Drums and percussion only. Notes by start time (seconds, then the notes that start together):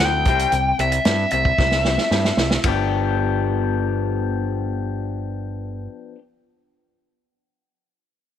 0.25 kick, closed hi-hat
0.39 closed hi-hat
0.52 closed hi-hat
0.79 closed hi-hat
0.92 closed hi-hat
1.05 snare, closed hi-hat
1.31 closed hi-hat
1.45 kick
1.58 kick, snare
1.71 snare
1.85 snare
1.98 snare
2.11 snare
2.25 snare
2.37 snare
2.51 snare
2.64 kick, ride